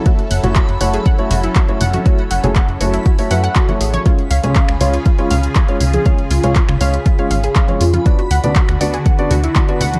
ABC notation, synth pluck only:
X:1
M:4/4
L:1/16
Q:1/4=120
K:F#m
V:1 name="Synth pluck"
F z f F F z f G f z F E F z f F | F z f G f z F E F z f f F z G c | ^E z ^e G e z E E E E e z E z e G | ^e z ^E E E E e z E z e G e z E E |
F F f z F z f G f z F E F F f z |]